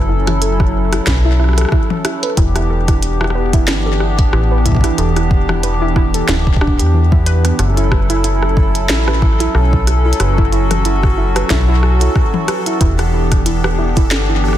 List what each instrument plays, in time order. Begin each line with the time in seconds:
Already playing: fm bass F#1, analog synth pad F#3 C#4 E4 A4
0.09 synth pluck E4
0.27 synth pluck E4, cross-stick, closed hi-hat, high tom
0.42 synth pluck A4, closed hi-hat
0.60 synth pluck E4, kick, cross-stick
0.93 synth pluck E4, cross-stick, closed hi-hat
1.07 fm bass B1, synth pluck B4, kick, snare, closed hi-hat
1.25 synth pluck E4
1.40 synth pluck E4, cross-stick
1.44 cross-stick
1.49 cross-stick
1.53 cross-stick
1.58 synth pluck A4, cross-stick, closed hi-hat
1.61 cross-stick
1.65 cross-stick
1.69 kick, cross-stick
1.72 synth pluck E4, cross-stick
1.90 high tom
2.05 synth pluck E4, cross-stick, closed hi-hat
2.23 synth pluck B4, closed hi-hat
2.37 fm bass E1, analog synth pad E3 B3 D4 G4, synth pluck E4, kick, closed hi-hat
2.56 synth pluck E4, cross-stick, closed hi-hat
2.70 synth pluck A4
2.88 synth pluck E4, kick, cross-stick, closed hi-hat
3.03 closed hi-hat
3.21 synth pluck E4, cross-stick
3.24 cross-stick
3.30 cross-stick
3.35 synth pluck B4
3.53 synth pluck E4, kick, closed hi-hat
3.68 fm bass G1, synth pluck E4, cross-stick, snare, closed hi-hat
3.86 synth pluck A4
4.00 synth pluck E4, cross-stick
4.19 kick, closed hi-hat
4.33 fm bass A1, synth pluck E4, cross-stick
4.51 synth pluck B4
4.66 synth pluck E4, kick, closed hi-hat
4.69 kick
4.72 kick
4.75 kick
4.76 kick
4.81 synth pluck E4, kick, cross-stick, closed hi-hat
4.98 fm bass E1, synth pluck A4, closed hi-hat
5.16 synth pluck E4, cross-stick, closed hi-hat
5.31 kick
5.49 synth pluck E4, cross-stick, high tom
5.63 synth pluck B4, closed hi-hat
5.82 synth pluck E4
5.96 synth pluck E4, kick, cross-stick
6.14 synth pluck A4, closed hi-hat
6.29 fm bass D1, synth pluck E4, cross-stick, snare, closed hi-hat
6.47 kick
6.56 kick
6.61 synth pluck D4, cross-stick
6.67 kick
6.79 fm bass E2, synth pluck G4, closed hi-hat
6.94 synth pluck E3
7.12 synth pluck E4, kick, high tom
7.26 synth pluck B4, closed hi-hat
7.45 synth pluck B3, cross-stick, closed hi-hat
7.59 fm bass F#1, analog synth pad F#3 C#4 E4 A4, synth texture A4, cross-stick, closed hi-hat
7.77 synth pluck E4, closed hi-hat
7.92 synth pluck B4, kick, cross-stick
8.10 synth pluck E4, closed hi-hat
8.24 synth pluck E4, closed hi-hat
8.43 synth pluck A4, cross-stick
8.57 synth pluck E4, kick
8.75 closed hi-hat
8.89 fm bass A1, synth pluck E4, snare, closed hi-hat
9.08 synth pluck B4, cross-stick
9.22 synth pluck E4, kick
9.40 synth pluck E4, closed hi-hat
9.55 fm bass B1, synth pluck A4, cross-stick
9.73 synth pluck E4, kick
9.87 cross-stick, closed hi-hat
10.05 synth pluck E4
10.13 closed hi-hat
10.20 fm bass F#1, analog synth pad F#4, synth pluck B4, cross-stick, closed hi-hat
10.38 synth pluck E4, kick
10.52 synth pluck E4, closed hi-hat
10.71 synth pluck A4, cross-stick, closed hi-hat, high tom
10.85 synth pluck E4, closed hi-hat
11.03 kick, cross-stick
11.18 synth pluck E4
11.36 synth pluck B4, cross-stick, closed hi-hat
11.50 fm bass B1, synth pluck E4, kick, snare, closed hi-hat
11.69 synth pluck E4
11.83 synth pluck A4, cross-stick
12.01 synth pluck E4, closed hi-hat
12.16 kick, cross-stick
12.34 synth pluck E4, high tom
12.48 synth pluck B4, cross-stick, closed hi-hat
12.66 synth pluck E4, closed hi-hat
12.81 fm bass E1, analog synth pad E3 B3 D4 G4, synth pluck E4, kick, closed hi-hat
12.99 synth pluck A4, cross-stick, closed hi-hat
13.13 synth pluck E4
13.32 kick, cross-stick, closed hi-hat
13.46 synth pluck E4, closed hi-hat
13.64 synth pluck B4, cross-stick
13.79 synth pluck E4
13.97 synth pluck E4, kick, closed hi-hat
14.11 fm bass G1, synth pluck A4, cross-stick, snare, closed hi-hat
14.29 synth pluck E4
14.44 cross-stick
14.48 cross-stick
14.53 cross-stick